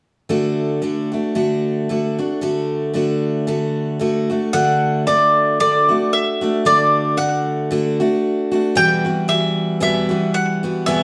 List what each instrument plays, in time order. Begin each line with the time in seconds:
0.29 steel-string acoustic guitar D3 A3 D4 F#4
0.82 steel-string acoustic guitar D3 A3 D4 F#4
1.12 steel-string acoustic guitar A3 D4 F#4
1.35 steel-string acoustic guitar D3 A3 D4 F#4
1.89 steel-string acoustic guitar D3 A3 D4 F#4
2.19 steel-string acoustic guitar A3 D4 F#4
2.41 steel-string acoustic guitar D3 A3 D4 F#4
2.94 steel-string acoustic guitar D3 A3 D4 F#4
3.47 steel-string acoustic guitar D3 A3 D4 F#4
3.99 steel-string acoustic guitar D3 A3 D4 F#4
4.30 steel-string acoustic guitar A3 D4 F#4
4.53 steel-string acoustic guitar D3 A3 D4 F#4, mandolin F#5
5.07 steel-string acoustic guitar D3 A3 D4 F#4, mandolin D5
5.60 steel-string acoustic guitar D3 A3 D4 F#4, mandolin D5
5.89 steel-string acoustic guitar A3 D4 F#4
6.13 mandolin E5
6.41 steel-string acoustic guitar A3 D4 F#4
6.65 steel-string acoustic guitar D3 A3 D4 F#4, mandolin D5
7.17 steel-string acoustic guitar D3 A3 D4 F#4, mandolin F#5
7.71 steel-string acoustic guitar D3 A3 D4 F#4
8.00 steel-string acoustic guitar A3 D4 F#4
8.52 steel-string acoustic guitar A3 D4 F#4
8.75 steel-string acoustic guitar E2 B2 E3 G3 B3 F#4, mandolin G5
9.05 steel-string acoustic guitar E3 G3 B3 F#4
9.28 steel-string acoustic guitar E3 G3 B3 F#4, mandolin E5
9.80 steel-string acoustic guitar E2 B2 E3 G3 B3 F#4, mandolin E5
10.09 steel-string acoustic guitar E3 G3 B3 F#4
10.34 mandolin F#5
10.63 steel-string acoustic guitar E3 G3 B3 F#4
10.86 steel-string acoustic guitar E2 B2 E3 G3 B3 F#4, mandolin E5